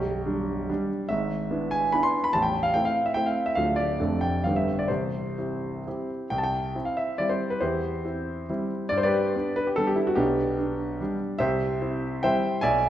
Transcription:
Already playing: B0 B1 G4
0.25 G3 D4
0.69 G3 D4
1.09 G#1 G#2 E5
1.51 B3 D4 E4
1.71 G#5
1.92 B3 D4 E4 B5
2.03 C6
2.24 B5
2.33 A0 A1 A5
2.42 G5
2.63 F5
2.74 A3 C4 E4 G5
2.85 F5
3.06 E5
3.14 A3 C4 E4 G5
3.26 F5
3.46 E5
3.55 D1 D2 A3 D4 F4 F5
3.76 D5
4.00 F1 F2 A3 D4 A4
4.21 G5
4.44 G1 G2 B3 D4 G4 F5
4.56 E5
4.79 D5
4.88 C1 C2 C5
5.38 C4 E4 G4
5.87 C4 E4 G4
6.30 C2 G5
6.38 A5
6.44 G5
6.75 C4 E4
6.85 F5
6.97 E5
7.18 G3 C4 E4 D5
7.29 C5
7.50 B4
7.61 E2 E4 G4 C5
8.05 C4 E4
8.49 G3 C4 E4
8.89 G2 D5
8.98 C5
9.03 G4 B4 D5
9.35 B3 D4
9.56 B4
9.67 G4
9.76 G3 B3 D4 A4
9.87 G4
9.96 E4
10.07 F#4
10.15 B1 B3 D4 G4
10.58 D4
11.01 G3 D4
11.39 C2 G4 C5 E5
11.81 C4 E4
12.23 G3 C4 E4 C5 E5 G5
12.61 B1 D5 E5 G#5

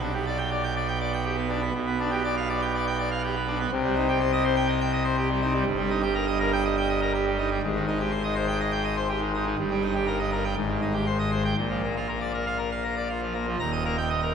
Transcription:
Already playing: B1 B2
0.01 D4
0.14 G4
0.26 D5
0.38 G5
0.51 D5
0.63 G5
0.76 D5
0.88 G5
1.00 D5
1.13 G5
1.25 G4
1.37 B3
1.50 D4
1.62 B3
1.74 B1 B2
1.87 B3
1.99 D4
2.11 G4
2.24 D5
2.37 F5
2.49 D5
2.62 G5
2.74 D5
2.87 G5
2.99 D5
3.11 F5
3.24 G4
3.35 B3
3.47 D4
3.60 B3
3.72 C2 C3
3.84 G3
3.96 D#4
4.08 G4
4.20 C5
4.33 D#5
4.45 C5
4.56 G5
4.68 D#5
4.81 G5
4.93 D#5
5.05 C5
5.17 G4
5.29 G3
5.42 D#4
5.54 G3
5.66 G1 G2
5.78 G3
5.90 D#4
6.02 G4
6.15 A#4
6.27 D#5
6.40 A#4
6.53 G5
6.65 D#5
6.77 G5
6.89 D#5
7.01 A#4
7.14 G4
7.26 G3
7.38 D#4
7.51 G3
7.63 G#1 G#2
7.75 D#3
7.88 D#4
8.00 G4
8.12 C5
8.24 D#5
8.36 C5
8.47 G5
8.60 D#5
8.72 G5
8.84 D#5
8.97 C5
9.09 G4
9.21 D#3
9.34 D#4
9.46 D#3
9.58 G1 G2
9.71 G3
9.82 D#4
9.95 G4
10.07 A#4
10.19 D#5
10.32 A#4
10.44 G5
10.56 G#1 G#2
10.69 D#3
10.82 D#4
10.94 G4
11.07 C5
11.19 D#5
11.32 C5
11.45 G5
11.57 A#1 A#2
11.70 F3
11.83 A#3
11.97 F4
12.08 A#4
12.21 D5
12.34 A#4
12.46 F5
12.58 A#4
12.72 F5
12.84 A#4
12.97 D5
13.09 F4
13.22 F3
13.34 A#3
13.47 F3
13.60 D#1 D#2 A#5
13.72 D#5
13.85 A#3 A#4
13.98 G5
14.10 D#5
14.22 A#4

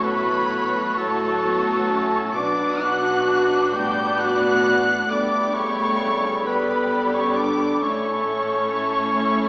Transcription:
Already playing: A1 A2 F#3 A3 F#4 A4 C#5 C#6
0.03 B3 B4 B5
0.96 F#3 A3 F#4 A4 A5
1.45 B3
1.91 C#4
2.35 B1 B2 F#3 D4 F#4 B4 D5 D6
2.80 F#4 F#5 F#6
3.74 A1 A2 G3 B3 D5 G5 G6
4.18 F#4 F#5 F#6
5.10 G1 G2 A3 B3 D4 G4 A4 D5 B5 D6
5.54 C#3 C#5 C#6
6.45 G3 B3 G4 B4 D5 B5
7.13 C#4 C#5 C#6
7.35 D4 D5 D6
7.80 A1 A2 A3 C#4 E4 A4 C#5 C#6

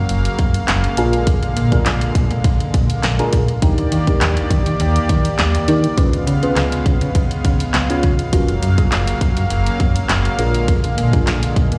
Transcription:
Already playing: C#3 F#3 A#3 F5
0.09 F#1, closed hi-hat
0.25 closed hi-hat
0.39 F#2, kick, closed hi-hat
0.54 closed hi-hat
0.68 F#1, snare, clap, closed hi-hat
0.84 closed hi-hat
0.97 A#1 D3 G#3 D4 F4 G#4 A#4, closed hi-hat
1.13 closed hi-hat
1.27 kick, closed hi-hat
1.43 A#1, closed hi-hat
1.56 A#2, closed hi-hat
1.72 D4 F4 G#4 A#4, kick, closed hi-hat
1.86 A#1, snare, clap, closed hi-hat
2.01 closed hi-hat
2.15 A#2, kick, closed hi-hat
2.31 A#2, closed hi-hat
2.44 A#1, kick, closed hi-hat
2.60 closed hi-hat
2.74 A#2, kick, closed hi-hat
2.90 closed hi-hat
3.03 A#1, snare, clap, closed hi-hat
3.19 D4 F4 G#4 A#4, closed hi-hat
3.33 A#2, kick, closed hi-hat
3.48 closed hi-hat
3.62 D#2 D#3 A#3 D4 D#4 G4 A#4 D5, kick, closed hi-hat
3.78 D#2, closed hi-hat
3.92 D#3, closed hi-hat
4.07 D4 D#4 G4 A#4, kick, closed hi-hat
4.21 D#2, snare, clap, closed hi-hat
4.37 closed hi-hat
4.50 D#3, kick, closed hi-hat
4.66 D#3, closed hi-hat
4.80 D#2, closed hi-hat
4.96 closed hi-hat
5.09 D#3, kick, closed hi-hat
5.25 closed hi-hat
5.39 D#2, snare, clap, closed hi-hat
5.55 closed hi-hat
5.68 D#3 D4 D#4 G4 A#4, closed hi-hat
5.84 closed hi-hat
5.97 C#2 C#3 G#3 B3 C#4 F4 G#4 B4 F5, kick, closed hi-hat
6.13 C#2, closed hi-hat
6.27 C#3, closed hi-hat
6.42 C#4 F4 G#4 B4, closed hi-hat
6.56 C#2, snare, clap, closed hi-hat
6.72 closed hi-hat
6.86 C#3, kick, closed hi-hat
7.01 C#3, closed hi-hat
7.15 C#2, kick, closed hi-hat
7.31 closed hi-hat
7.45 C#3, kick, closed hi-hat
7.60 closed hi-hat
7.74 C#2, snare, clap, closed hi-hat
7.89 C#4 F4 G#4 C#5, closed hi-hat
8.03 C#3, kick, closed hi-hat
8.19 closed hi-hat
8.33 F#1 F#3 A#3 C#4 F4 F#4 A#4, kick, closed hi-hat
8.48 F#1, closed hi-hat
8.62 F#2, closed hi-hat
8.78 C#4 F4 F#4 G#4, kick, closed hi-hat
8.92 F#1, snare, clap, closed hi-hat
9.07 closed hi-hat
9.21 F#2, kick, closed hi-hat
9.37 F#2, closed hi-hat
9.50 F#1, closed hi-hat
9.66 closed hi-hat
9.80 F#2, kick, closed hi-hat
9.96 closed hi-hat
10.09 F#1, snare, clap, closed hi-hat
10.25 closed hi-hat
10.38 A#1 D3 G#3 D4 F4 G#4 A#4, closed hi-hat
10.54 closed hi-hat
10.68 kick, closed hi-hat
10.84 A#1, closed hi-hat
10.98 A#2, closed hi-hat
11.13 D4 F4 G#4 A#4, kick, closed hi-hat
11.27 A#1, snare, clap, closed hi-hat
11.43 closed hi-hat
11.56 A#2, kick, closed hi-hat
11.72 A#2, closed hi-hat

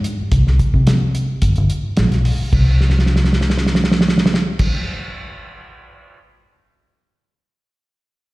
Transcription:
0.04 closed hi-hat
0.21 muted fingered electric bass stroke
0.32 C2, kick, closed hi-hat
0.47 C2, snare
0.59 kick, closed hi-hat
0.74 C3, kick
0.87 snare, closed hi-hat
1.15 closed hi-hat
1.42 G1, kick, closed hi-hat
1.56 G1, closed hi-hat
1.70 closed hi-hat
1.86 muted fingered electric bass stroke
1.97 B1, snare, closed hi-hat
2.12 snare, closed hi-hat
2.25 open hi-hat
2.41 muted fingered electric bass stroke
2.53 C2, kick, crash
2.81 snare
2.90 snare
2.99 snare
3.06 snare
3.16 snare
3.24 snare
3.33 snare
3.41 snare
3.50 snare
3.58 snare
3.66 snare
3.75 snare
3.84 snare
3.92 snare
4.01 snare
4.09 snare
4.18 snare
4.26 snare
4.34 snare
4.59 kick, crash

